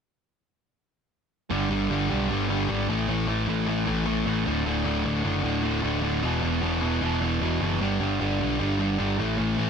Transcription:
1.50 1.69 G1 medium
1.50 1.69 G2 medium
1.50 1.69 D3 loud
1.50 1.69 G3 loud
1.70 1.89 G1 medium
1.70 1.88 G2 medium
1.70 1.89 D3 medium
1.70 1.89 G3 medium
1.89 2.08 G1 medium
1.89 2.08 G2 medium
1.89 2.08 D3 medium
1.89 2.09 G3 medium
2.09 2.29 B1 medium
2.09 2.28 G2 medium
2.09 2.28 D3 medium
2.09 2.29 G3 medium
2.29 2.67 G1 medium
2.29 2.48 G2 medium
2.29 2.48 D3 medium
2.29 2.49 G3 medium
2.49 2.68 G2 medium
2.49 2.68 D3 medium
2.49 2.69 G3 medium
2.69 2.87 G#1 medium
2.69 2.87 G2 medium
2.69 2.87 D3 medium
2.69 2.88 G3 medium
2.88 3.06 A1 medium
2.88 3.07 A2 loud
2.88 3.07 E3 medium
2.88 3.08 A3 loud
3.08 3.26 A1 medium
3.08 3.26 A2 medium
3.08 3.27 E3 medium
3.08 3.28 A3 loud
3.27 3.46 A1 medium
3.27 3.46 A2 medium
3.27 3.46 E3 medium
3.27 3.47 A3 medium
3.47 3.85 A1 medium
3.47 3.65 A2 medium
3.47 3.66 E3 medium
3.47 3.67 A3 medium
3.67 3.85 A2 medium
3.67 3.85 E3 medium
3.67 3.85 A3 medium
3.86 4.24 A1 medium
3.86 4.04 A2 medium
3.86 4.05 E3 medium
3.86 4.05 A3 loud
4.06 4.24 A2 medium
4.06 4.25 E3 medium
4.06 4.26 A3 medium
4.26 4.45 A1 medium
4.26 4.44 A2 medium
4.26 4.44 E3 medium
4.26 4.45 A3 medium
4.45 4.65 D1 medium
4.45 4.63 D2 loud
4.45 4.64 A2 loud
4.45 4.64 D3 loud
4.64 4.84 D1 medium
4.64 4.84 D2 medium
4.64 4.84 A2 medium
4.64 4.84 D3 loud
4.85 5.04 D1 medium
4.85 5.03 D2 medium
4.85 5.03 A2 medium
4.85 5.04 D3 medium
5.04 5.24 D1 medium
5.04 5.23 D2 medium
5.04 5.23 A2 medium
5.04 5.23 D3 medium
5.24 5.43 F#1 medium
5.24 5.42 D2 medium
5.24 5.42 A2 medium
5.24 5.42 D3 medium
5.43 5.82 D1 medium
5.43 5.61 D2 medium
5.43 5.62 A2 medium
5.43 5.62 D3 medium
5.62 5.80 D2 medium
5.62 5.81 A2 medium
5.62 5.81 D3 medium
5.81 6.21 D1 medium
5.81 6.00 D2 medium
5.81 6.01 A2 medium
5.81 6.01 D3 medium
6.02 6.21 D2 medium
6.02 6.21 A2 medium
6.02 6.21 D3 loud
6.22 6.42 E1 medium
6.22 6.40 E2 medium
6.22 6.40 B2 loud
6.22 6.41 E3 medium
6.41 6.61 E1 medium
6.41 6.61 E2 medium
6.41 6.61 B2 medium
6.41 6.61 E3 medium
6.62 7.00 E1 medium
6.62 6.80 E2 medium
6.62 6.81 B2 medium
6.62 6.81 E3 medium
6.81 7.01 E2 medium
6.81 7.01 B2 medium
6.81 7.01 E3 medium
7.01 7.39 E1 medium
7.01 7.21 E2 medium
7.01 7.21 B2 medium
7.01 7.22 E3 medium
7.22 7.41 E2 medium
7.22 7.41 B2 medium
7.22 7.42 E3 medium
7.41 7.59 E1 medium
7.41 7.60 E2 medium
7.41 7.60 B2 medium
7.41 7.60 E3 medium
7.61 7.79 F#1 medium
7.61 7.79 E2 medium
7.61 7.79 B2 medium
7.61 7.80 E3 medium
7.80 7.99 G1 medium
7.80 7.99 G2 medium
7.80 8.00 D3 medium
7.80 8.00 G3 loud
8.00 8.19 G1 medium
8.00 8.19 G2 medium
8.00 8.19 D3 medium
8.00 8.20 G3 medium
8.20 8.39 G1 medium
8.20 8.39 G2 medium
8.20 8.39 D3 medium
8.20 8.40 G3 medium
8.40 8.59 B1 medium
8.40 8.58 G2 medium
8.40 8.58 D3 medium
8.40 8.59 G3 medium
8.59 8.97 G1 medium
8.59 8.77 G2 medium
8.59 8.78 D3 medium
8.59 8.79 G3 medium
8.78 8.96 G2 medium
8.78 8.97 D3 medium
8.78 8.97 G3 loud
8.98 9.18 G1 medium
8.98 9.16 G2 medium
8.98 9.17 D3 medium
8.98 9.17 G3 medium
9.18 9.37 A1 medium
9.18 9.36 A2 loud
9.18 9.37 E3 loud
9.18 9.38 A3 loud
9.37 9.57 A1 medium
9.37 9.57 A2 medium
9.37 9.57 E3 medium
9.37 9.59 A3 loud
9.58 9.70 A1 medium
9.58 9.70 A2 medium
9.58 9.70 E3 medium
9.58 9.70 A3 medium

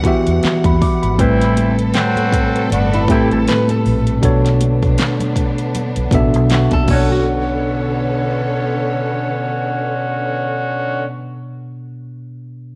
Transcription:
0.00 1.15 E3 medium
0.00 1.15 G3 medium
0.00 1.15 F#5 medium
0.00 kick medium
0.04 0.92 E3 medium
0.04 0.92 B3 medium
0.04 0.93 F#4 medium
0.04 0.93 G4 medium
0.04 0.94 E5 medium
0.04 closed hi-hat medium
0.27 0.42 E2 medium
0.27 closed hi-hat soft
0.43 muted fingered electric bass stroke soft
0.43 snare medium
0.43 clap medium
0.43 closed hi-hat medium
0.43 muted conga soft
0.64 0.80 E2 medium
0.64 0.80 B5 medium
0.64 kick medium
0.64 closed hi-hat soft
0.64 high conga medium
0.82 1.02 D6 medium
0.82 kick medium
0.82 open hi-hat soft
0.82 muted conga soft
1.02 1.20 G#1 medium
1.02 1.38 B5 medium
1.02 closed hi-hat soft
1.17 1.91 A1 loud
1.17 2.33 A2 medium
1.17 4.20 C3 medium
1.17 1.75 E3 loud
1.17 2.34 G3 medium
1.17 2.33 A3 medium
1.17 6.84 A3 medium
1.17 1.75 C4 loud
1.17 2.34 C4 medium
1.17 1.75 E4 loud
1.17 4.19 A4 medium
1.17 4.20 B4 medium
1.17 2.35 B4 medium
1.17 kick loud
1.17 closed hi-hat medium
1.41 snare soft
1.41 closed hi-hat medium
1.57 closed hi-hat medium
1.57 muted conga soft
1.57 high conga medium
1.79 closed hi-hat medium
1.94 2.66 F#3 medium
1.94 2.66 C4 loud
1.94 2.66 F#4 loud
1.94 snare loud
1.94 clap medium
1.94 closed hi-hat medium
2.16 closed hi-hat soft
2.16 high conga medium
2.16 low conga medium
2.32 kick medium
2.32 closed hi-hat medium
2.56 closed hi-hat medium
2.70 3.06 G1 medium
2.70 3.01 B3 medium
2.70 3.01 D4 medium
2.70 3.01 F#4 medium
2.70 closed hi-hat medium
2.70 high conga soft
2.70 low conga medium
2.93 3.09 E4 medium
2.93 closed hi-hat soft
3.08 3.96 A2 loud
3.08 3.39 E3 medium
3.08 3.96 A3 medium
3.08 3.39 C4 medium
3.08 3.96 C4 medium
3.08 3.39 E4 medium
3.08 3.97 G4 medium
3.08 3.30 G4 medium
3.08 3.97 A4 loud
3.08 kick loud
3.08 closed hi-hat medium
3.31 3.46 A1 medium
3.31 3.48 A4 medium
3.31 closed hi-hat medium
3.47 3.68 B4 medium
3.47 snare medium
3.47 clap medium
3.47 closed hi-hat medium
3.47 muted conga soft
3.68 4.21 A4 medium
3.68 closed hi-hat soft
3.68 high conga medium
3.85 4.20 A#1 medium
3.85 open hi-hat soft
3.85 muted conga soft
4.07 closed hi-hat soft
4.21 4.95 B1 medium
4.21 5.37 B2 medium
4.21 6.86 D3 medium
4.21 5.37 B3 medium
4.21 6.86 B3 medium
4.21 6.86 D4 medium
4.21 5.38 D4 medium
4.21 5.38 A4 medium
4.21 5.39 C#5 loud
4.21 kick loud
4.21 closed hi-hat medium
4.46 snare soft
4.46 closed hi-hat medium
4.61 closed hi-hat medium
4.61 muted conga soft
4.61 high conga medium
4.83 kick medium
4.83 closed hi-hat soft
4.98 snare loud
4.98 clap medium
4.98 closed hi-hat medium
4.98 muted conga soft
5.20 closed hi-hat medium
5.20 high conga medium
5.20 low conga medium
5.36 kick medium
5.36 closed hi-hat medium
5.36 muted conga soft
5.58 closed hi-hat soft
5.75 closed hi-hat medium
5.75 high conga soft
5.75 low conga medium
5.96 6.11 B1 medium
5.96 closed hi-hat medium
6.11 6.36 A1 medium
6.11 6.82 B2 medium
6.11 6.85 B3 medium
6.11 6.89 D4 medium
6.11 6.89 A4 medium
6.11 6.89 E5 loud
6.11 kick medium
6.11 closed hi-hat medium
6.34 6.70 B1 medium
6.34 closed hi-hat medium
6.50 6.71 F#4 medium
6.50 snare medium
6.50 clap medium
6.50 closed hi-hat medium
6.71 6.87 B1 medium
6.71 7.09 A4 medium
6.71 kick medium
6.71 closed hi-hat soft
6.71 high conga medium
6.83 10.99 B2 medium
6.83 11.02 B3 medium
6.88 11.04 B1 medium
6.88 11.04 D3 medium
6.88 11.05 D3 medium
6.88 11.04 B3 medium
6.88 11.03 C#4 medium
6.88 11.05 D4 medium
6.88 11.04 F#4 medium
6.88 11.05 A4 medium
6.88 11.04 C#5 medium
6.88 kick loud
6.88 crash medium
6.88 high conga medium
6.93 11.08 A4 medium
6.93 11.11 C#5 medium
7.12 7.47 F#4 medium

